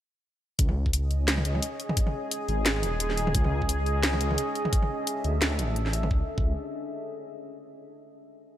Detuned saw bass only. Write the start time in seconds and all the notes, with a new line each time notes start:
0.59 C#2
1.45 C#2
2.49 G#1
2.66 G#1
2.83 D#1
3.35 C#2
4.21 C#2
5.24 D2
5.42 D2
5.59 A1
6.11 C#2
6.38 C#2